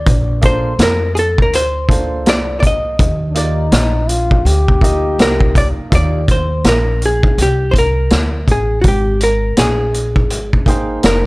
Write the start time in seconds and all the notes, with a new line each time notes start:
Already playing: D5
0.06 A#1, kick, closed hi-hat
0.42 A#3 D4 F4 A4 C5, kick, closed hi-hat
0.46 C5
0.79 F2, snare, closed hi-hat
0.83 A#4
1.15 G#4 A4, closed hi-hat
1.38 A#4, kick
1.52 D2 C5, closed hi-hat
1.89 A#3 D4 F4 A4 C5, kick, closed hi-hat
2.25 C2, snare, closed hi-hat
2.30 D5
2.60 D5, kick, closed hi-hat
2.67 D#5
2.99 D#2, kick, closed hi-hat
3.30 D4
3.35 A#3 D#4 F4 G4 D5, closed hi-hat
3.72 A#1, snare, closed hi-hat
4.09 F4, closed hi-hat
4.31 kick
4.45 D2 G4, closed hi-hat
4.68 kick
4.81 A#3 D#4 F4 G4 D#5, kick, closed hi-hat
5.19 C2 A#4, snare, closed hi-hat
5.40 kick
5.55 D5, kick, closed hi-hat
5.78 muted upright bass stroke
5.90 D#2 A#3 D#4 F4 G4 D5, kick, closed hi-hat
5.95 D5
6.28 C5, kick, closed hi-hat
6.64 A#1, snare, closed hi-hat
6.69 A#4
7.02 G#4, closed hi-hat
7.23 kick
7.38 C2, closed hi-hat
7.42 G4
7.71 C5, kick, closed hi-hat
7.78 A#4
8.10 D2, snare, closed hi-hat
8.48 A1 G#4, kick, closed hi-hat
8.81 G#1 F#4, kick, closed hi-hat
8.88 G4
9.20 A#4, closed hi-hat
9.57 A#1 G#4, snare, closed hi-hat
9.94 closed hi-hat
10.16 kick
10.30 G#1, closed hi-hat
10.53 kick
10.66 A#3 D#4 G#4 C5 G5, kick, closed hi-hat
11.03 F1 A#4, snare, closed hi-hat